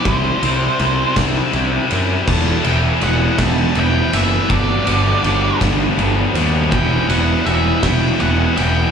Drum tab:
CC |------|x-----|------|------|
RD |xxxxxx|-xxxxx|xxxxxx|xxxxxx|
SD |---o--|---o--|---o--|---o--|
BD |o--o--|o--o--|o--o--|o--o--|